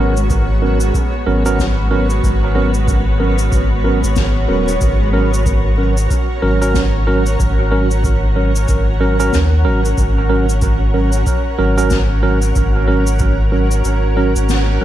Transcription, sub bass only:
0, 0, Header, 1, 2, 480
1, 0, Start_track
1, 0, Tempo, 645161
1, 1661, Time_signature, 4, 2, 24, 8
1, 11045, End_track
2, 0, Start_track
2, 0, Title_t, "Sub bass"
2, 0, Program_c, 0, 38
2, 0, Note_on_c, 0, 32, 99
2, 683, Note_off_c, 0, 32, 0
2, 942, Note_on_c, 0, 32, 96
2, 1643, Note_off_c, 0, 32, 0
2, 1661, Note_on_c, 0, 32, 96
2, 2603, Note_off_c, 0, 32, 0
2, 2619, Note_on_c, 0, 32, 79
2, 2997, Note_off_c, 0, 32, 0
2, 3001, Note_on_c, 0, 32, 89
2, 3321, Note_off_c, 0, 32, 0
2, 3340, Note_on_c, 0, 27, 97
2, 3557, Note_off_c, 0, 27, 0
2, 3579, Note_on_c, 0, 32, 99
2, 4521, Note_off_c, 0, 32, 0
2, 4780, Note_on_c, 0, 32, 94
2, 5482, Note_off_c, 0, 32, 0
2, 5502, Note_on_c, 0, 32, 98
2, 6443, Note_off_c, 0, 32, 0
2, 6461, Note_on_c, 0, 32, 85
2, 6923, Note_off_c, 0, 32, 0
2, 6942, Note_on_c, 0, 39, 89
2, 7179, Note_on_c, 0, 32, 95
2, 7191, Note_off_c, 0, 39, 0
2, 7397, Note_off_c, 0, 32, 0
2, 7421, Note_on_c, 0, 32, 100
2, 8362, Note_off_c, 0, 32, 0
2, 8620, Note_on_c, 0, 32, 98
2, 9322, Note_off_c, 0, 32, 0
2, 9341, Note_on_c, 0, 32, 99
2, 10283, Note_off_c, 0, 32, 0
2, 10301, Note_on_c, 0, 32, 80
2, 10678, Note_off_c, 0, 32, 0
2, 10683, Note_on_c, 0, 32, 90
2, 11002, Note_off_c, 0, 32, 0
2, 11045, End_track
0, 0, End_of_file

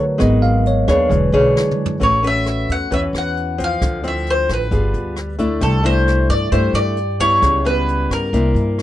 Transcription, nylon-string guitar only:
0, 0, Header, 1, 2, 480
1, 0, Start_track
1, 0, Tempo, 451467
1, 212, Time_signature, 4, 2, 24, 8
1, 9381, End_track
2, 0, Start_track
2, 0, Title_t, "Nylon-string guitar"
2, 0, Program_c, 0, 24
2, 0, Note_on_c, 0, 54, 56
2, 183, Note_off_c, 0, 54, 0
2, 192, Note_on_c, 0, 63, 54
2, 193, Note_on_c, 0, 56, 58
2, 198, Note_on_c, 0, 71, 55
2, 206, Note_on_c, 0, 66, 55
2, 677, Note_off_c, 0, 63, 0
2, 681, Note_off_c, 0, 71, 0
2, 685, Note_off_c, 0, 66, 0
2, 935, Note_on_c, 0, 62, 75
2, 941, Note_on_c, 0, 68, 70
2, 943, Note_on_c, 0, 73, 84
2, 1137, Note_off_c, 0, 56, 0
2, 1162, Note_on_c, 0, 52, 49
2, 1375, Note_off_c, 0, 62, 0
2, 1375, Note_off_c, 0, 68, 0
2, 1378, Note_off_c, 0, 73, 0
2, 1418, Note_on_c, 0, 62, 72
2, 1420, Note_on_c, 0, 68, 84
2, 1425, Note_on_c, 0, 73, 84
2, 2095, Note_off_c, 0, 62, 0
2, 2095, Note_off_c, 0, 68, 0
2, 2099, Note_off_c, 0, 73, 0
2, 2102, Note_off_c, 0, 52, 0
2, 2122, Note_on_c, 0, 61, 49
2, 2125, Note_on_c, 0, 57, 47
2, 2130, Note_on_c, 0, 66, 50
2, 2137, Note_on_c, 0, 71, 54
2, 2327, Note_off_c, 0, 61, 0
2, 2330, Note_off_c, 0, 66, 0
2, 2335, Note_off_c, 0, 71, 0
2, 2366, Note_on_c, 0, 61, 55
2, 2374, Note_on_c, 0, 66, 58
2, 2381, Note_on_c, 0, 71, 58
2, 3049, Note_off_c, 0, 61, 0
2, 3054, Note_off_c, 0, 66, 0
2, 3055, Note_off_c, 0, 71, 0
2, 3064, Note_off_c, 0, 57, 0
2, 3090, Note_on_c, 0, 52, 45
2, 3094, Note_on_c, 0, 61, 50
2, 3102, Note_on_c, 0, 66, 46
2, 3103, Note_on_c, 0, 71, 57
2, 3773, Note_off_c, 0, 61, 0
2, 3774, Note_off_c, 0, 66, 0
2, 3778, Note_off_c, 0, 71, 0
2, 3810, Note_on_c, 0, 53, 66
2, 3816, Note_on_c, 0, 60, 53
2, 4027, Note_off_c, 0, 52, 0
2, 4060, Note_on_c, 0, 50, 46
2, 4252, Note_off_c, 0, 53, 0
2, 4253, Note_off_c, 0, 60, 0
2, 4291, Note_on_c, 0, 53, 61
2, 4294, Note_on_c, 0, 60, 64
2, 4302, Note_on_c, 0, 64, 55
2, 4972, Note_off_c, 0, 53, 0
2, 4975, Note_off_c, 0, 60, 0
2, 4976, Note_off_c, 0, 64, 0
2, 4991, Note_off_c, 0, 50, 0
2, 5007, Note_on_c, 0, 59, 47
2, 5010, Note_on_c, 0, 55, 50
2, 5016, Note_on_c, 0, 65, 48
2, 5019, Note_on_c, 0, 68, 47
2, 5486, Note_off_c, 0, 59, 0
2, 5491, Note_off_c, 0, 65, 0
2, 5491, Note_off_c, 0, 68, 0
2, 5722, Note_off_c, 0, 55, 0
2, 5726, Note_on_c, 0, 57, 58
2, 5729, Note_on_c, 0, 62, 56
2, 5737, Note_on_c, 0, 64, 73
2, 5960, Note_on_c, 0, 48, 52
2, 6170, Note_off_c, 0, 57, 0
2, 6172, Note_off_c, 0, 62, 0
2, 6173, Note_off_c, 0, 64, 0
2, 6202, Note_on_c, 0, 57, 64
2, 6207, Note_on_c, 0, 62, 59
2, 6216, Note_on_c, 0, 64, 64
2, 6888, Note_off_c, 0, 57, 0
2, 6890, Note_off_c, 0, 62, 0
2, 6895, Note_off_c, 0, 64, 0
2, 6901, Note_off_c, 0, 48, 0
2, 6935, Note_on_c, 0, 55, 57
2, 6936, Note_on_c, 0, 57, 58
2, 6944, Note_on_c, 0, 62, 51
2, 6946, Note_on_c, 0, 64, 54
2, 7408, Note_off_c, 0, 57, 0
2, 7413, Note_off_c, 0, 64, 0
2, 7415, Note_off_c, 0, 62, 0
2, 7642, Note_off_c, 0, 55, 0
2, 7655, Note_on_c, 0, 55, 57
2, 7660, Note_on_c, 0, 59, 65
2, 7669, Note_on_c, 0, 64, 73
2, 7894, Note_on_c, 0, 49, 52
2, 8094, Note_off_c, 0, 55, 0
2, 8097, Note_off_c, 0, 59, 0
2, 8099, Note_off_c, 0, 64, 0
2, 8128, Note_on_c, 0, 55, 54
2, 8136, Note_on_c, 0, 59, 66
2, 8139, Note_on_c, 0, 64, 68
2, 8810, Note_off_c, 0, 55, 0
2, 8814, Note_off_c, 0, 64, 0
2, 8815, Note_off_c, 0, 59, 0
2, 8827, Note_off_c, 0, 49, 0
2, 8861, Note_on_c, 0, 48, 53
2, 8861, Note_on_c, 0, 58, 50
2, 8867, Note_on_c, 0, 62, 49
2, 8867, Note_on_c, 0, 64, 54
2, 9381, Note_off_c, 0, 48, 0
2, 9381, Note_off_c, 0, 58, 0
2, 9381, Note_off_c, 0, 62, 0
2, 9381, Note_off_c, 0, 64, 0
2, 9381, End_track
0, 0, End_of_file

